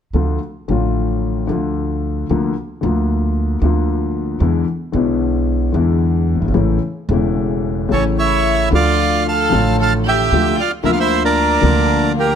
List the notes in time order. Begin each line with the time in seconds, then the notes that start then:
0.13 D2 D3 F3 A3 F4
0.68 A1 A2 D3 F3 A3 F4
1.47 D2 D3 F3 A3
1.52 F4
2.29 D2 D3 F3 A#3 F4
2.81 D2 D3 F3 A#3
2.85 F4
3.62 D2 D3 F3 A#3 F4
4.40 E2 D3 E3 G#3 B3 E4
4.92 B1 B2 D3 G#3 B3
4.96 E4
5.72 E2 D3 E3 G#3 B3
5.76 E4
6.35 F#1
6.41 G1
6.48 G#1
6.54 A1 A2 C#3 E3 A3 E4
7.08 E1 E2 C#3 E3 A3
7.13 E4
7.88 A1 A2 C#3 E3 A3 E4
7.92 A1 C#4 A4 C#5
8.18 E4 C#5 E5
8.70 D2 D3 F3 A3 F4
8.75 D5 F5
9.28 A4 F5 A5
9.50 A1 A2 D3 F3 A3
9.54 F4
9.79 A4 F5 A5
10.06 G4 E5 G5
10.31 D2 D3 F3 A3 F4
10.56 F4 D5
10.60 F5
10.83 D2 D3 F3 A#3 E4 A#4 E5
10.87 F4
10.93 F5
10.98 E4 C5 E5
11.23 D4 A#4 D5
11.61 D2 D3 F3 A#3 F4
12.16 A#3 G4 A#4